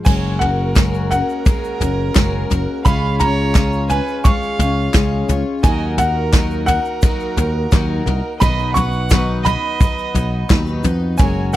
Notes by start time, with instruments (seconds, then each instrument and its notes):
0.05 picked electric bass F#1, twelve-string acoustic guitar F#3 G#3 C#4 F#4 A#4, harmonium G#3 A#3 F#4, fiddle C#5, upright piano G#5, kick, floor tom, crash, shaker
0.39 twelve-string acoustic guitar F#4 A#4, fiddle A#4, upright piano F#5, floor tom
0.43 twelve-string acoustic guitar C#4
0.75 twelve-string acoustic guitar F#3 G#3 C#4 F#4 A#4, kick, snare, clap, floor tom, shaker
0.94 shaker
1.11 twelve-string acoustic guitar C#4 F#4 A#4, fiddle A#4, upright piano F#5, floor tom, shaker
1.29 shaker
1.46 twelve-string acoustic guitar G#3 C#4 F#4 A#4, kick, floor tom, shaker
1.64 shaker
1.80 picked electric bass F#1, twelve-string acoustic guitar C#4 F#4 A#4, floor tom, shaker
2.15 picked electric bass F#1, twelve-string acoustic guitar F#3 G#3 C#4 F#4 A#4, kick, snare, clap, floor tom, shaker
2.50 picked electric bass F#1, twelve-string acoustic guitar C#4 F#4 A#4, floor tom, shaker
2.85 picked electric bass C#2, twelve-string acoustic guitar C#3 G#3 C#4 F4 C#5, harmonium C#3 F4, fiddle F5, upright piano B5, kick, floor tom, shaker
3.19 twelve-string acoustic guitar F4 C#5, fiddle C#5, upright piano A#5, floor tom, shaker
3.23 twelve-string acoustic guitar C#4
3.55 twelve-string acoustic guitar C#3 G#3 C#4 F4 C#5, kick, snare, clap, floor tom, shaker
3.73 shaker
3.90 twelve-string acoustic guitar C#4 F4 C#5, fiddle B4, upright piano G#5, floor tom, shaker
4.08 shaker
4.24 twelve-string acoustic guitar G#3 C#4 F4 C#5, fiddle F5, upright piano C#6, kick, floor tom, shaker
4.42 shaker
4.59 picked electric bass C#2, twelve-string acoustic guitar C#4 F4 C#5, floor tom, shaker
4.94 picked electric bass C#2, twelve-string acoustic guitar C#3 G#3 C#4 F4 C#5, kick, snare, clap, floor tom, shaker
5.28 picked electric bass C#2, twelve-string acoustic guitar C#4 F4 C#5, floor tom, shaker
5.63 picked electric bass D#2, twelve-string acoustic guitar D#3 F#3 D#4 F#4 A#4, harmonium D#3 A#3 F#4, fiddle D#5, upright piano G#5, kick, floor tom, shaker
5.97 twelve-string acoustic guitar D#4 F#4 A#4, fiddle A#4, upright piano F#5, floor tom, shaker
6.33 twelve-string acoustic guitar D#3 F#3 D#4 F#4 A#4, kick, snare, clap, floor tom, shaker
6.51 shaker
6.65 fiddle A#4, twelve-string acoustic guitar A#4, upright piano F#5, floor tom, shaker
6.70 twelve-string acoustic guitar D#4 F#4
6.85 shaker
7.02 twelve-string acoustic guitar F#3 D#4 F#4 A#4, kick, floor tom, shaker
7.20 shaker
7.37 picked electric bass D#2, twelve-string acoustic guitar D#4 F#4 A#4, floor tom, shaker
7.72 picked electric bass D#2, twelve-string acoustic guitar D#3 F#3 D#4 F#4 A#4, kick, snare, clap, floor tom, shaker
8.06 picked electric bass C2, twelve-string acoustic guitar D#4 F#4 A#4, floor tom
8.40 picked electric bass B1, twelve-string acoustic guitar B2 D#3 F#3 B3 D#4 B4, harmonium B3 D#4 F#4, fiddle D#5, upright piano B5, kick, floor tom, shaker
8.59 shaker
8.73 twelve-string acoustic guitar D#4 B4, fiddle F#5, upright piano C#6, floor tom, shaker
8.78 twelve-string acoustic guitar F#3 B3
8.92 shaker
9.10 twelve-string acoustic guitar B2 D#3 F#3 B3 D#4 B4, kick, snare, clap, floor tom, shaker
9.43 twelve-string acoustic guitar B4, fiddle D#5, upright piano B5, floor tom, shaker
9.48 twelve-string acoustic guitar F#3 B3 D#4
9.80 twelve-string acoustic guitar F#3 B3 D#4 B4, kick, floor tom, shaker
9.99 shaker
10.14 picked electric bass B1, twelve-string acoustic guitar F#3 B3 D#4 B4, floor tom, shaker
10.50 picked electric bass D#2, twelve-string acoustic guitar B2 D#3 F#3 B3 D#4 B4, kick, snare, clap, floor tom, shaker
10.66 shaker
10.84 picked electric bass F2, twelve-string acoustic guitar B3 D#4 B4, floor tom, shaker
11.18 picked electric bass F#1, twelve-string acoustic guitar F#3 G#3 C#4 F#4 A#4, harmonium G#3 A#3 F#4, fiddle C#5, upright piano G#5, kick, floor tom, shaker
11.53 fiddle A#4, shaker